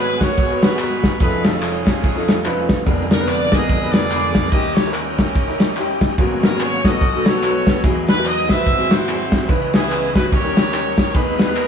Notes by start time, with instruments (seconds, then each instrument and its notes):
Already playing: grand piano G#1 G#2 B3 F#4 G#4 C#5, tonewheel organ G#3 B3 F#4 G#4, horn section B4
0.20 grand piano B3 F#4 G#4 A#4, horn section F#4 A#4 C#5, kick, snare, ride, tambourine
0.38 kick, ride, tambourine
0.49 grand piano B3 F#4 G#4 B4
0.62 horn section D#4 F#4 B4, snare, ride, tambourine
0.79 grand piano B3 F#4 G#4 A#5, clap, ride, tambourine
1.04 kick, snare, ride, tambourine
1.20 grand piano F1 F2 C#4 D#4 F4 A4, tonewheel organ F3 C#4 D#4 G#4, horn section D#4 G#4 B4, kick, ride, tambourine
1.26 tonewheel organ A3
1.44 horn section A4, snare, ride, tambourine
1.53 grand piano C#4 D#4 F4 A4
1.61 horn section C#4 D#4 G#4, clap, ride, tambourine
1.86 grand piano C#4 D#4 F4 G#4, kick, snare, ride, tambourine
2.04 kick, ride, tambourine
2.15 grand piano C#4 D#4 F4 A4
2.28 snare, ride, tambourine
2.44 grand piano C#4 D#4 F4 B4, clap, ride, tambourine
2.69 kick, snare, ride, tambourine
2.85 grand piano F1 F2 B3 D4 G#4 A#4, tonewheel organ F2 D3 G#3 B3 A#4, kick, ride, tambourine
3.11 horn section A#4, snare, ride, tambourine
3.19 grand piano B3 D4 G#4 B4
3.27 horn section D5, clap, ride, tambourine
3.51 grand piano B3 D4 G#4 A#4, horn section G#4 A#4 D#5, kick, snare, ride, tambourine
3.69 kick, ride, tambourine
3.81 grand piano B3 D4 G#4 B4
3.93 horn section G#4 A#4 D5, snare, ride, tambourine
4.11 grand piano B3 D4 G#4 B5, clap, ride, tambourine
4.35 kick, snare, ride, tambourine
4.50 grand piano D#2 D#3 C#4 D#4 E4 G4, tonewheel organ D#3 C#4 G4 D#5, horn section G4 A#4 D#5, kick, ride, tambourine
4.75 horn section C#5, snare, ride, tambourine
4.84 grand piano C#4 D#4 E4 A#4
4.92 horn section C#4 G4 A#4, clap, ride, tambourine
5.18 grand piano C#4 D#4 E4 A#4, kick, snare, ride, tambourine
5.35 kick, ride, tambourine
5.48 grand piano C#4 D#4 E4 A#4
5.60 snare, ride, tambourine
5.76 grand piano C#4 D#4 E4 G4, clap, ride, tambourine
6.01 kick, snare, ride, tambourine
6.18 grand piano G#1 G#2 B3 C#4 F#4 A#4, tonewheel organ F#3 A#3 B3 C#4 G#4, kick, ride, tambourine
6.43 horn section A#4, snare, ride, tambourine
6.51 grand piano B3 C#4 F#4 G#4
6.60 horn section C#5, clap, ride, tambourine
6.84 grand piano B3 C#4 F#4 C#5, horn section F#4 A4 D#5, kick, snare, ride, tambourine
7.01 grand piano B1 B2, tonewheel organ F#3 B3 D#4 A4, kick, ride, tambourine
7.13 grand piano B3 D#4 F#4 A4
7.26 horn section F#4 A4 C#5, snare, ride, tambourine
7.42 grand piano B3 C#4 F#4 B4, clap, ride, tambourine
7.48 grand piano D#4
7.67 kick, snare, ride, tambourine
7.84 grand piano E2 E3 D#4 E4 F#4 G#4, tonewheel organ F#3 D#4 E4 G4, kick, ride, tambourine
7.90 tonewheel organ G#4
8.08 horn section B4, snare, ride, tambourine
8.16 grand piano D#4 E4 F#4 A#4
8.25 horn section D#5, clap, ride, tambourine
8.48 grand piano D#4 E4 F#4 B4, horn section B4 C5 E5, kick, snare, ride, tambourine
8.66 grand piano G#1 G#2, tonewheel organ F#3 C4 E4 G#4, kick, ride, tambourine
8.78 grand piano C4 E4 F#4 G#4
8.91 horn section E4 F#4 C5, snare, ride, tambourine
9.06 grand piano B3 E4 F#4 G#4, clap, ride, tambourine
9.11 grand piano C4
9.32 kick, snare, ride, tambourine
9.48 grand piano C#2 C#3 C#4 D#4 E4 B4, tonewheel organ E3 C#4 B4 D#5, kick, ride, tambourine
9.73 horn section B3 E4 G#4, snare, ride, tambourine
9.82 grand piano C#4 D#4 E4 B4
9.91 clap, ride, tambourine
10.14 grand piano C#4 D#4 E4 F#4, horn section B4, kick, snare, ride, tambourine
10.32 grand piano D#2 D#3, tonewheel organ G3 C#4 D#4 A#4, horn section G4 A#4 C#5, kick, ride, tambourine
10.43 grand piano C#4 D#4 G4 A#4
10.57 snare, ride, tambourine
10.71 grand piano C#4 D#4 G4 A#4, clap, ride, tambourine
10.98 kick, snare, ride, tambourine
11.13 grand piano D#2 D#3 B3 D#4 G#4 B4, tonewheel organ D#3 G#3 B3 D#4 B4, horn section D#4 G#4 B4, kick, ride, tambourine
11.39 snare, ride, tambourine
11.46 grand piano B3 D#4 G#4 B4
11.56 horn section A#4, clap, ride, tambourine